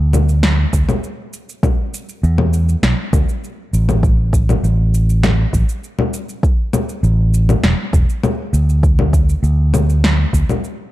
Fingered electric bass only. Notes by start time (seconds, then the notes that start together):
Already playing: D2
0.73 D2
2.23 E2
2.83 B1
3.13 D2
3.73 A1
4.63 A1
5.53 A1
7.03 A1
7.63 E1
7.93 E1
8.53 D2
9.43 D2
10.33 D2